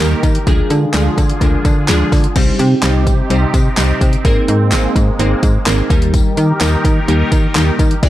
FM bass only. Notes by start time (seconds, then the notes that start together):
0.00 D#2
0.23 D#3
0.47 D2
0.70 D3
0.94 D2
1.18 D3
1.41 D2
1.65 D3
1.89 D2
2.12 D3
2.36 C2
2.59 C3
2.83 C2
3.07 C3
3.30 C2
3.54 C3
3.78 C2
4.01 C3
4.25 G#1
4.48 G#2
4.72 G#1
4.96 G#2
5.19 G#1
5.43 G#2
5.67 G#1
5.90 D#2
6.37 D#3
6.61 D#2
6.85 D#3
7.08 D#2
7.32 D#3
7.55 D#2
7.79 D#3
8.03 D2